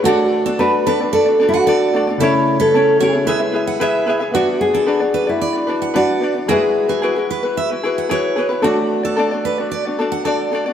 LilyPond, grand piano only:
\new Staff \with { instrumentName = "Grand piano" } { \time 4/4 \key b \dorian \tempo 4 = 112 <a fis' d''>2.~ <a fis' d''>8 <a fis' d''>8 | <cis a e' cis''>2 <gis e' b'>2 | <b fis' d''>1 | <g gis fis' e''>1 |
<a fis' d''>1 | }